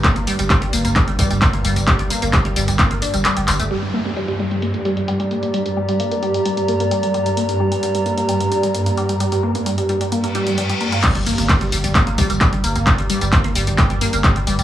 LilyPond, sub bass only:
\new Staff \with { instrumentName = "Sub bass" } { \clef bass \time 4/4 \key g \minor \tempo 4 = 131 r16 g,,16 r16 g,,16 r16 g,,16 g,,16 g,,16 r16 g,,16 r16 g,,16 r16 g,,16 g,,16 g,,16 | r16 g,,16 r16 g,,16 r16 g,,16 g,,16 g,,16 r16 g,,16 r16 g,,16 r16 g,,16 g,,16 g,,16 | r1 | r1 |
r1 | r1 | r16 g,,16 r16 g,,16 r16 g,,16 g,,16 g,,16 r16 g,,16 r16 g,,16 r16 g,,16 g,,16 g,,16 | r16 g,,16 r16 g,,16 r16 g,,16 g,,16 g,,16 r16 g,,16 r16 g,,16 r16 g,,16 g,,16 g,,16 | }